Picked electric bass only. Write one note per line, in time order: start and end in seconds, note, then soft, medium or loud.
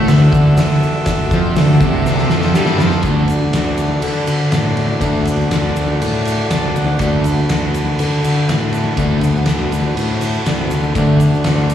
0.09 0.32 D2 medium
0.33 0.56 D2 medium
1.31 1.54 F2 medium
1.57 1.80 D2 medium
1.81 2.27 C2 loud
2.31 2.53 F2 loud
2.56 2.78 G2 medium
2.79 3.02 F2 loud
3.04 3.42 D2 medium
3.54 3.92 D2 medium
4.03 4.22 D3 loud
4.28 4.47 D3 loud
4.53 4.91 A2 medium
5.02 5.21 D2 medium
5.28 5.47 D2 medium
5.52 5.71 D2 medium
5.77 5.96 D2 medium
6.02 6.40 A2 medium
6.50 6.70 C2 medium
6.76 6.95 D2 medium
7.00 7.38 D2 medium
7.50 7.89 D2 medium
8.00 8.19 D3 loud
8.25 8.44 D3 medium
8.49 8.87 A2 medium
8.97 9.17 D2 medium
9.24 9.43 D2 medium
9.48 9.67 D2 medium
9.72 9.91 D2 medium
9.97 10.35 A2 loud
10.46 10.66 C2 medium
10.71 10.90 D2 medium
10.95 11.34 D2 medium
11.46 11.74 D2 medium